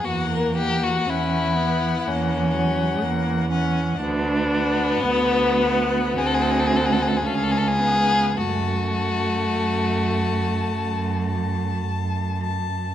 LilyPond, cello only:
\new Staff \with { instrumentName = "Cello" } { \clef bass \time 4/4 \key fis \minor \tempo 4 = 56 e,4 e,4 e,4 e,4 | d,4 d,4 d,4 cis,4 | fis,4 fis,4 fis,4 fis,4 | }